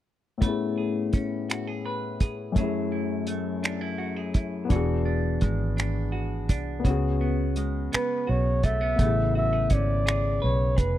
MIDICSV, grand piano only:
0, 0, Header, 1, 2, 480
1, 0, Start_track
1, 0, Key_signature, 3, "major"
1, 0, Tempo, 714286
1, 282, Time_signature, 6, 3, 24, 8
1, 7381, End_track
2, 0, Start_track
2, 0, Title_t, "Grand piano"
2, 0, Program_c, 0, 0
2, 254, Note_on_c, 0, 45, 56
2, 273, Note_on_c, 0, 59, 54
2, 289, Note_on_c, 0, 61, 49
2, 311, Note_on_c, 0, 64, 53
2, 326, Note_on_c, 0, 68, 64
2, 430, Control_c, 0, 64, 127
2, 1681, Note_off_c, 0, 45, 0
2, 1690, Note_off_c, 0, 59, 0
2, 1694, Note_on_c, 0, 42, 59
2, 1699, Note_off_c, 0, 61, 0
2, 1709, Note_off_c, 0, 64, 0
2, 1712, Note_on_c, 0, 57, 50
2, 1717, Note_off_c, 0, 68, 0
2, 1729, Control_c, 0, 64, 0
2, 1732, Note_on_c, 0, 61, 53
2, 1749, Note_on_c, 0, 64, 54
2, 1766, Note_on_c, 0, 68, 59
2, 1864, Control_c, 0, 64, 127
2, 3121, Note_off_c, 0, 42, 0
2, 3123, Note_on_c, 0, 59, 62
2, 3130, Note_off_c, 0, 57, 0
2, 3140, Note_off_c, 0, 61, 0
2, 3149, Note_off_c, 0, 64, 0
2, 3151, Note_on_c, 0, 62, 57
2, 3157, Note_off_c, 0, 68, 0
2, 3171, Control_c, 0, 64, 0
2, 3174, Note_on_c, 0, 66, 54
2, 3197, Note_on_c, 0, 68, 70
2, 3305, Control_c, 0, 64, 127
2, 4556, Note_off_c, 0, 59, 0
2, 4567, Note_on_c, 0, 59, 64
2, 4570, Note_off_c, 0, 62, 0
2, 4581, Note_off_c, 0, 66, 0
2, 4593, Note_off_c, 0, 68, 0
2, 4593, Note_on_c, 0, 61, 55
2, 4610, Control_c, 0, 64, 0
2, 4618, Note_on_c, 0, 66, 56
2, 4639, Note_on_c, 0, 68, 70
2, 4741, Control_c, 0, 64, 127
2, 5998, Note_off_c, 0, 59, 0
2, 6011, Note_off_c, 0, 61, 0
2, 6021, Note_on_c, 0, 59, 53
2, 6023, Note_off_c, 0, 66, 0
2, 6034, Note_off_c, 0, 68, 0
2, 6044, Note_on_c, 0, 49, 51
2, 6052, Control_c, 0, 64, 0
2, 6070, Note_on_c, 0, 64, 51
2, 6090, Note_on_c, 0, 68, 61
2, 6165, Control_c, 0, 64, 127
2, 7381, Note_off_c, 0, 49, 0
2, 7381, Note_off_c, 0, 59, 0
2, 7381, Note_off_c, 0, 64, 0
2, 7381, Note_off_c, 0, 68, 0
2, 7381, End_track
0, 0, End_of_file